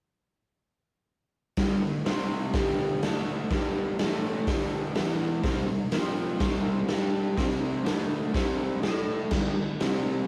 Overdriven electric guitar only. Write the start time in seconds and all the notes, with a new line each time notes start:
1.58 G2 D3 G3
1.82 G2 D3
2.06 C3 G3 C4
2.54 G2 D3 G3
3.03 D3 A3 D4
3.51 G2 D3 G3
3.99 A2 E3 A3
4.47 G2 D3 G3
4.95 E3 B3 E4
5.43 C3 G3 C4
5.68 C3 G3
5.92 F3 C4 F4
6.39 C3 G3 C4
6.88 G3 D4 G4
7.37 C3 G3 C4
7.85 D3 A3 D4
8.34 C3 G3 C4
8.83 A3 E4 A4
9.32 G2 D3 G3
9.56 G2 D3
9.81 C3 G3 C4